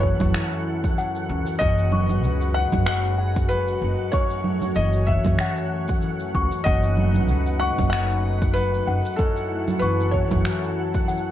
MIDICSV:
0, 0, Header, 1, 8, 480
1, 0, Start_track
1, 0, Tempo, 631579
1, 1225, Time_signature, 4, 2, 24, 8
1, 8599, End_track
2, 0, Start_track
2, 0, Title_t, "Celesta"
2, 0, Program_c, 0, 8
2, 0, Control_c, 0, 64, 127
2, 0, Note_on_c, 0, 85, 75
2, 746, Note_on_c, 0, 78, 104
2, 975, Note_off_c, 0, 78, 0
2, 1234, Control_c, 0, 64, 0
2, 1239, Note_off_c, 0, 85, 0
2, 1361, Control_c, 0, 64, 127
2, 1463, Note_on_c, 0, 85, 72
2, 1693, Note_off_c, 0, 85, 0
2, 2419, Note_on_c, 0, 78, 92
2, 2652, Note_off_c, 0, 78, 0
2, 3143, Note_on_c, 0, 85, 83
2, 3154, Control_c, 0, 64, 0
2, 3297, Control_c, 0, 64, 127
2, 3374, Note_off_c, 0, 85, 0
2, 4109, Note_on_c, 0, 78, 97
2, 4336, Note_off_c, 0, 78, 0
2, 4827, Note_on_c, 0, 85, 80
2, 5055, Note_off_c, 0, 85, 0
2, 5058, Note_on_c, 0, 78, 96
2, 5074, Control_c, 0, 64, 0
2, 5223, Control_c, 0, 64, 127
2, 5291, Note_off_c, 0, 78, 0
2, 5781, Note_on_c, 0, 85, 79
2, 6013, Note_off_c, 0, 85, 0
2, 6744, Note_on_c, 0, 78, 104
2, 6974, Note_off_c, 0, 78, 0
2, 6996, Control_c, 0, 64, 0
2, 7144, Control_c, 0, 64, 127
2, 7463, Note_on_c, 0, 85, 75
2, 7694, Note_off_c, 0, 85, 0
2, 8421, Note_on_c, 0, 78, 92
2, 8599, Note_off_c, 0, 78, 0
2, 8599, End_track
3, 0, Start_track
3, 0, Title_t, "Synth texture"
3, 0, Program_c, 1, 99
3, 0, Note_on_c, 1, 78, 84
3, 8599, Note_off_c, 1, 78, 0
3, 8599, End_track
4, 0, Start_track
4, 0, Title_t, "Felt piano"
4, 0, Program_c, 2, 0
4, 0, Note_on_c, 2, 73, 85
4, 942, Note_off_c, 2, 73, 0
4, 1206, Note_on_c, 2, 75, 108
4, 1933, Note_on_c, 2, 78, 102
4, 1958, Note_off_c, 2, 75, 0
4, 2164, Note_off_c, 2, 78, 0
4, 2175, Note_on_c, 2, 78, 105
4, 2650, Note_on_c, 2, 71, 94
4, 2675, Note_off_c, 2, 78, 0
4, 3129, Note_on_c, 2, 73, 102
4, 3152, Note_off_c, 2, 71, 0
4, 3615, Note_on_c, 2, 75, 85
4, 3632, Note_off_c, 2, 73, 0
4, 3850, Note_on_c, 2, 76, 81
4, 3868, Note_off_c, 2, 75, 0
4, 4787, Note_off_c, 2, 76, 0
4, 5045, Note_on_c, 2, 75, 101
4, 5773, Note_on_c, 2, 78, 100
4, 5797, Note_off_c, 2, 75, 0
4, 5991, Note_off_c, 2, 78, 0
4, 6002, Note_on_c, 2, 78, 105
4, 6486, Note_on_c, 2, 71, 102
4, 6509, Note_off_c, 2, 78, 0
4, 6964, Note_on_c, 2, 69, 91
4, 6991, Note_off_c, 2, 71, 0
4, 7443, Note_on_c, 2, 71, 89
4, 7469, Note_off_c, 2, 69, 0
4, 7676, Note_off_c, 2, 71, 0
4, 7686, Note_on_c, 2, 73, 84
4, 8599, Note_off_c, 2, 73, 0
4, 8599, End_track
5, 0, Start_track
5, 0, Title_t, "Analog synth pad"
5, 0, Program_c, 3, 89
5, 0, Note_on_c, 3, 54, 85
5, 0, Note_on_c, 3, 64, 73
5, 0, Note_on_c, 3, 69, 88
5, 1206, Note_off_c, 3, 64, 0
5, 1207, Note_off_c, 3, 54, 0
5, 1208, Note_off_c, 3, 69, 0
5, 1225, Note_on_c, 3, 71, 91
5, 1226, Note_on_c, 3, 56, 86
5, 1226, Note_on_c, 3, 66, 77
5, 3126, Note_off_c, 3, 56, 0
5, 3126, Note_off_c, 3, 71, 0
5, 3139, Note_on_c, 3, 57, 85
5, 3139, Note_on_c, 3, 73, 93
5, 5035, Note_off_c, 3, 66, 0
5, 5043, Note_off_c, 3, 73, 0
5, 5068, Note_on_c, 3, 71, 94
5, 5069, Note_on_c, 3, 63, 77
5, 6952, Note_off_c, 3, 57, 0
5, 6968, Note_off_c, 3, 63, 0
5, 6968, Note_off_c, 3, 71, 0
5, 6982, Note_on_c, 3, 54, 88
5, 6982, Note_on_c, 3, 69, 95
5, 6985, Note_on_c, 3, 64, 80
5, 8599, Note_off_c, 3, 54, 0
5, 8599, Note_off_c, 3, 64, 0
5, 8599, Note_off_c, 3, 69, 0
5, 8599, End_track
6, 0, Start_track
6, 0, Title_t, "Harp"
6, 0, Program_c, 4, 46
6, 0, Note_on_c, 4, 42, 86
6, 0, Note_on_c, 4, 52, 72
6, 0, Note_on_c, 4, 54, 69
6, 0, Note_on_c, 4, 57, 62
6, 0, Note_on_c, 4, 69, 73
6, 26, Note_on_c, 4, 61, 60
6, 259, Note_off_c, 4, 42, 0
6, 268, Note_on_c, 4, 42, 89
6, 506, Note_off_c, 4, 69, 0
6, 509, Note_on_c, 4, 69, 67
6, 740, Note_off_c, 4, 52, 0
6, 749, Note_on_c, 4, 52, 68
6, 986, Note_off_c, 4, 61, 0
6, 989, Note_on_c, 4, 61, 60
6, 1216, Note_off_c, 4, 42, 0
6, 1225, Note_on_c, 4, 42, 88
6, 1263, Note_off_c, 4, 52, 0
6, 1466, Note_on_c, 4, 59, 62
6, 1701, Note_off_c, 4, 54, 0
6, 1704, Note_on_c, 4, 54, 70
6, 1946, Note_on_c, 4, 63, 54
6, 2075, Note_off_c, 4, 57, 0
6, 2173, Note_off_c, 4, 42, 0
6, 2178, Note_off_c, 4, 69, 0
6, 2183, Note_on_c, 4, 42, 84
6, 2424, Note_on_c, 4, 68, 73
6, 2663, Note_off_c, 4, 54, 0
6, 2666, Note_on_c, 4, 54, 68
6, 2901, Note_off_c, 4, 63, 0
6, 2904, Note_on_c, 4, 63, 60
6, 3133, Note_off_c, 4, 42, 0
6, 3142, Note_on_c, 4, 42, 87
6, 3191, Note_off_c, 4, 61, 0
6, 3383, Note_on_c, 4, 57, 59
6, 3429, Note_off_c, 4, 68, 0
6, 3628, Note_on_c, 4, 52, 74
6, 3674, Note_off_c, 4, 63, 0
6, 3826, Note_off_c, 4, 59, 0
6, 3865, Note_on_c, 4, 61, 55
6, 4093, Note_off_c, 4, 42, 0
6, 4102, Note_on_c, 4, 42, 85
6, 4345, Note_on_c, 4, 69, 66
6, 4572, Note_off_c, 4, 52, 0
6, 4582, Note_on_c, 4, 52, 70
6, 4817, Note_off_c, 4, 61, 0
6, 4820, Note_on_c, 4, 61, 61
6, 5060, Note_off_c, 4, 42, 0
6, 5069, Note_on_c, 4, 42, 88
6, 5103, Note_off_c, 4, 52, 0
6, 5305, Note_on_c, 4, 59, 64
6, 5545, Note_off_c, 4, 54, 0
6, 5548, Note_on_c, 4, 54, 69
6, 5782, Note_on_c, 4, 63, 57
6, 6015, Note_off_c, 4, 42, 0
6, 6024, Note_on_c, 4, 42, 90
6, 6259, Note_off_c, 4, 69, 0
6, 6262, Note_on_c, 4, 69, 66
6, 6504, Note_off_c, 4, 54, 0
6, 6507, Note_on_c, 4, 54, 70
6, 6744, Note_off_c, 4, 63, 0
6, 6747, Note_on_c, 4, 63, 58
6, 6975, Note_off_c, 4, 42, 0
6, 6984, Note_on_c, 4, 42, 82
6, 7023, Note_off_c, 4, 61, 0
6, 7224, Note_off_c, 4, 57, 0
6, 7227, Note_on_c, 4, 57, 62
6, 7469, Note_on_c, 4, 52, 69
6, 7515, Note_off_c, 4, 63, 0
6, 7665, Note_off_c, 4, 59, 0
6, 7703, Note_on_c, 4, 61, 60
6, 7939, Note_off_c, 4, 42, 0
6, 7948, Note_on_c, 4, 42, 90
6, 8186, Note_off_c, 4, 69, 0
6, 8189, Note_on_c, 4, 69, 65
6, 8418, Note_off_c, 4, 52, 0
6, 8427, Note_on_c, 4, 52, 72
6, 8599, Note_off_c, 4, 42, 0
6, 8599, Note_off_c, 4, 52, 0
6, 8599, Note_off_c, 4, 54, 0
6, 8599, Note_off_c, 4, 57, 0
6, 8599, Note_off_c, 4, 61, 0
6, 8599, Note_off_c, 4, 69, 0
6, 8599, End_track
7, 0, Start_track
7, 0, Title_t, "Upright bass"
7, 0, Program_c, 5, 32
7, 0, Note_on_c, 5, 30, 100
7, 79, Note_off_c, 5, 30, 0
7, 159, Note_on_c, 5, 30, 89
7, 226, Note_off_c, 5, 30, 0
7, 983, Note_on_c, 5, 37, 99
7, 1069, Note_off_c, 5, 37, 0
7, 1225, Note_on_c, 5, 30, 101
7, 1703, Note_off_c, 5, 30, 0
7, 1703, Note_on_c, 5, 37, 94
7, 1999, Note_off_c, 5, 37, 0
7, 2077, Note_on_c, 5, 30, 93
7, 2841, Note_off_c, 5, 30, 0
7, 2900, Note_on_c, 5, 30, 81
7, 2987, Note_off_c, 5, 30, 0
7, 3619, Note_on_c, 5, 30, 91
7, 3917, Note_off_c, 5, 30, 0
7, 3995, Note_on_c, 5, 30, 96
7, 4064, Note_off_c, 5, 30, 0
7, 4823, Note_on_c, 5, 37, 101
7, 4908, Note_off_c, 5, 37, 0
7, 5063, Note_on_c, 5, 30, 102
7, 5543, Note_off_c, 5, 30, 0
7, 5543, Note_on_c, 5, 37, 94
7, 5839, Note_off_c, 5, 37, 0
7, 5918, Note_on_c, 5, 30, 91
7, 6682, Note_off_c, 5, 30, 0
7, 6745, Note_on_c, 5, 30, 81
7, 6829, Note_off_c, 5, 30, 0
7, 7463, Note_on_c, 5, 30, 89
7, 7759, Note_off_c, 5, 30, 0
7, 7840, Note_on_c, 5, 30, 94
7, 7906, Note_off_c, 5, 30, 0
7, 8599, End_track
8, 0, Start_track
8, 0, Title_t, "Drums"
8, 25, Note_on_c, 9, 36, 57
8, 101, Note_off_c, 9, 36, 0
8, 153, Note_on_c, 9, 64, 80
8, 154, Note_on_c, 9, 82, 63
8, 159, Note_on_c, 9, 36, 110
8, 229, Note_off_c, 9, 64, 0
8, 230, Note_off_c, 9, 82, 0
8, 235, Note_off_c, 9, 36, 0
8, 262, Note_on_c, 9, 26, 72
8, 262, Note_on_c, 9, 82, 56
8, 338, Note_off_c, 9, 26, 0
8, 338, Note_off_c, 9, 82, 0
8, 396, Note_on_c, 9, 82, 34
8, 472, Note_off_c, 9, 82, 0
8, 639, Note_on_c, 9, 36, 103
8, 640, Note_on_c, 9, 82, 73
8, 715, Note_off_c, 9, 36, 0
8, 716, Note_off_c, 9, 82, 0
8, 747, Note_on_c, 9, 82, 55
8, 823, Note_off_c, 9, 82, 0
8, 877, Note_on_c, 9, 82, 31
8, 953, Note_off_c, 9, 82, 0
8, 1114, Note_on_c, 9, 82, 66
8, 1190, Note_off_c, 9, 82, 0
8, 1220, Note_on_c, 9, 82, 62
8, 1224, Note_on_c, 9, 36, 123
8, 1296, Note_off_c, 9, 82, 0
8, 1300, Note_off_c, 9, 36, 0
8, 1353, Note_on_c, 9, 82, 34
8, 1429, Note_off_c, 9, 82, 0
8, 1458, Note_on_c, 9, 64, 57
8, 1534, Note_off_c, 9, 64, 0
8, 1591, Note_on_c, 9, 64, 57
8, 1592, Note_on_c, 9, 82, 68
8, 1667, Note_off_c, 9, 64, 0
8, 1668, Note_off_c, 9, 82, 0
8, 1699, Note_on_c, 9, 82, 54
8, 1775, Note_off_c, 9, 82, 0
8, 1834, Note_on_c, 9, 82, 34
8, 1910, Note_off_c, 9, 82, 0
8, 2070, Note_on_c, 9, 64, 74
8, 2070, Note_on_c, 9, 82, 67
8, 2076, Note_on_c, 9, 36, 100
8, 2146, Note_off_c, 9, 64, 0
8, 2146, Note_off_c, 9, 82, 0
8, 2152, Note_off_c, 9, 36, 0
8, 2178, Note_on_c, 9, 26, 76
8, 2178, Note_on_c, 9, 82, 55
8, 2254, Note_off_c, 9, 26, 0
8, 2254, Note_off_c, 9, 82, 0
8, 2314, Note_on_c, 9, 82, 36
8, 2390, Note_off_c, 9, 82, 0
8, 2553, Note_on_c, 9, 82, 69
8, 2556, Note_on_c, 9, 36, 110
8, 2629, Note_off_c, 9, 82, 0
8, 2632, Note_off_c, 9, 36, 0
8, 2659, Note_on_c, 9, 82, 58
8, 2735, Note_off_c, 9, 82, 0
8, 2794, Note_on_c, 9, 82, 32
8, 2870, Note_off_c, 9, 82, 0
8, 3134, Note_on_c, 9, 82, 58
8, 3141, Note_on_c, 9, 36, 123
8, 3210, Note_off_c, 9, 82, 0
8, 3217, Note_off_c, 9, 36, 0
8, 3270, Note_on_c, 9, 82, 36
8, 3346, Note_off_c, 9, 82, 0
8, 3375, Note_on_c, 9, 64, 56
8, 3451, Note_off_c, 9, 64, 0
8, 3509, Note_on_c, 9, 64, 58
8, 3509, Note_on_c, 9, 82, 68
8, 3585, Note_off_c, 9, 64, 0
8, 3585, Note_off_c, 9, 82, 0
8, 3613, Note_on_c, 9, 82, 54
8, 3689, Note_off_c, 9, 82, 0
8, 3745, Note_on_c, 9, 82, 34
8, 3821, Note_off_c, 9, 82, 0
8, 3863, Note_on_c, 9, 36, 58
8, 3939, Note_off_c, 9, 36, 0
8, 3987, Note_on_c, 9, 64, 75
8, 3987, Note_on_c, 9, 82, 65
8, 3997, Note_on_c, 9, 36, 99
8, 4063, Note_off_c, 9, 64, 0
8, 4063, Note_off_c, 9, 82, 0
8, 4073, Note_off_c, 9, 36, 0
8, 4094, Note_on_c, 9, 26, 70
8, 4094, Note_on_c, 9, 82, 52
8, 4170, Note_off_c, 9, 26, 0
8, 4170, Note_off_c, 9, 82, 0
8, 4227, Note_on_c, 9, 82, 32
8, 4303, Note_off_c, 9, 82, 0
8, 4469, Note_on_c, 9, 82, 69
8, 4477, Note_on_c, 9, 36, 105
8, 4545, Note_off_c, 9, 82, 0
8, 4553, Note_off_c, 9, 36, 0
8, 4572, Note_on_c, 9, 82, 54
8, 4648, Note_off_c, 9, 82, 0
8, 4709, Note_on_c, 9, 82, 31
8, 4785, Note_off_c, 9, 82, 0
8, 4824, Note_on_c, 9, 36, 58
8, 4900, Note_off_c, 9, 36, 0
8, 4952, Note_on_c, 9, 82, 69
8, 5028, Note_off_c, 9, 82, 0
8, 5056, Note_on_c, 9, 82, 60
8, 5064, Note_on_c, 9, 36, 123
8, 5132, Note_off_c, 9, 82, 0
8, 5140, Note_off_c, 9, 36, 0
8, 5191, Note_on_c, 9, 82, 35
8, 5267, Note_off_c, 9, 82, 0
8, 5298, Note_on_c, 9, 64, 54
8, 5374, Note_off_c, 9, 64, 0
8, 5431, Note_on_c, 9, 64, 56
8, 5431, Note_on_c, 9, 82, 60
8, 5507, Note_off_c, 9, 64, 0
8, 5507, Note_off_c, 9, 82, 0
8, 5536, Note_on_c, 9, 82, 52
8, 5612, Note_off_c, 9, 82, 0
8, 5673, Note_on_c, 9, 82, 35
8, 5749, Note_off_c, 9, 82, 0
8, 5915, Note_on_c, 9, 64, 72
8, 5915, Note_on_c, 9, 82, 63
8, 5918, Note_on_c, 9, 36, 107
8, 5991, Note_off_c, 9, 64, 0
8, 5991, Note_off_c, 9, 82, 0
8, 5994, Note_off_c, 9, 36, 0
8, 6026, Note_on_c, 9, 26, 72
8, 6026, Note_on_c, 9, 82, 54
8, 6102, Note_off_c, 9, 26, 0
8, 6102, Note_off_c, 9, 82, 0
8, 6161, Note_on_c, 9, 82, 34
8, 6237, Note_off_c, 9, 82, 0
8, 6398, Note_on_c, 9, 36, 111
8, 6400, Note_on_c, 9, 82, 68
8, 6474, Note_off_c, 9, 36, 0
8, 6476, Note_off_c, 9, 82, 0
8, 6506, Note_on_c, 9, 82, 56
8, 6582, Note_off_c, 9, 82, 0
8, 6640, Note_on_c, 9, 82, 31
8, 6716, Note_off_c, 9, 82, 0
8, 6879, Note_on_c, 9, 82, 64
8, 6955, Note_off_c, 9, 82, 0
8, 6984, Note_on_c, 9, 36, 116
8, 6984, Note_on_c, 9, 82, 54
8, 7060, Note_off_c, 9, 36, 0
8, 7060, Note_off_c, 9, 82, 0
8, 7117, Note_on_c, 9, 82, 33
8, 7193, Note_off_c, 9, 82, 0
8, 7356, Note_on_c, 9, 64, 58
8, 7356, Note_on_c, 9, 82, 68
8, 7432, Note_off_c, 9, 64, 0
8, 7432, Note_off_c, 9, 82, 0
8, 7461, Note_on_c, 9, 82, 56
8, 7537, Note_off_c, 9, 82, 0
8, 7601, Note_on_c, 9, 82, 33
8, 7677, Note_off_c, 9, 82, 0
8, 7705, Note_on_c, 9, 36, 51
8, 7781, Note_off_c, 9, 36, 0
8, 7837, Note_on_c, 9, 64, 72
8, 7837, Note_on_c, 9, 82, 66
8, 7839, Note_on_c, 9, 36, 95
8, 7913, Note_off_c, 9, 64, 0
8, 7913, Note_off_c, 9, 82, 0
8, 7915, Note_off_c, 9, 36, 0
8, 7943, Note_on_c, 9, 26, 70
8, 7943, Note_on_c, 9, 82, 50
8, 8019, Note_off_c, 9, 26, 0
8, 8019, Note_off_c, 9, 82, 0
8, 8079, Note_on_c, 9, 82, 32
8, 8155, Note_off_c, 9, 82, 0
8, 8317, Note_on_c, 9, 82, 66
8, 8319, Note_on_c, 9, 36, 100
8, 8393, Note_off_c, 9, 82, 0
8, 8395, Note_off_c, 9, 36, 0
8, 8424, Note_on_c, 9, 82, 55
8, 8491, Note_off_c, 9, 82, 0
8, 8491, Note_on_c, 9, 82, 30
8, 8567, Note_off_c, 9, 82, 0
8, 8599, End_track
0, 0, End_of_file